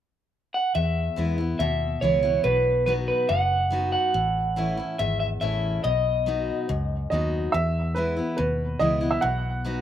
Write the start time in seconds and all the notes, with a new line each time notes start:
0.54 F#5
0.75 E2 E5
1.16 E2 E3 G#3 B3 E4
1.38 B3 E4
1.59 D#2 B2 E5
2.01 C#2 E3 G#3 B3 E4 C#5
2.23 B3 E4
2.44 B1 B2 B4
2.86 F#3 B3 D#4 F#4 B4
3.08 B4
3.29 F#1 F#2 F#5
3.71 F#3 B3 D#4 F#4
3.92 F#5
4.14 A1 A2
4.56 E3 A3 C#4 E4
4.77 C#4 E4
4.99 G#1 E2 E5
5.20 E5
5.41 A1 E3 A3 C#4 E4 E5
5.84 B1 B2 D#5
6.26 F#3 B3 D#4 F#4
6.69 C#2 F#2
7.10 D#2 F#3 B3 D#4 F#4 D#5
7.52 E2 E5
7.95 E3 G#3 B3 E4 B4
8.17 B3 E4
8.37 D#2 B2 B4
8.79 C#2 E3 G#3 B3 E4 D#5
9.01 B3 E4
9.11 E5
9.21 B1 B2 F#5
9.65 F#3 B3 D#4 F#4